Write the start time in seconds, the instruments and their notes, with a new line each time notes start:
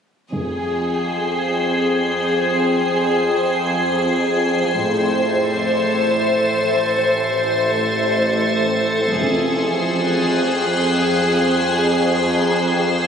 0.31 double bass section F1, synth drone F2, cello section F2, ambient pad G#4 C5 G5, violin section G#4
4.74 synth drone A1, double bass section A1, cello section A2, ambient pad A4 C5 E5, violin section C5
9.15 double bass section F1, synth drone F2, cello section F2, violin section G#4 C6, ambient pad G#4 C5 G5
9.88 violin section F#6